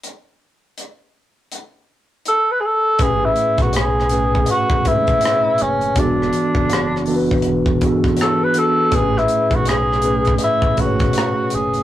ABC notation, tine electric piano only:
X:1
M:4/4
L:1/16
Q:"Swing 16ths" 1/4=81
K:A
V:1 name="Tine electric piano"
z16 | [A,,A,CGB]4- [A,,A,CGB] z [A,,A,CGB]4 [B,,A,=C^CGB]4- [B,,A,=C^CGB] z | [E,B,DFGA]4- [E,B,DFGA] z [E,B,DFAB]4 [E,B,DFGA]4 [E,B,DFA]2 | [A,,A,=C^CGB]4- [A,,A,=C^CGB] z [A,,A,CGB]4 [B,,A,CGBc]4- [B,,A,CGBc] z |]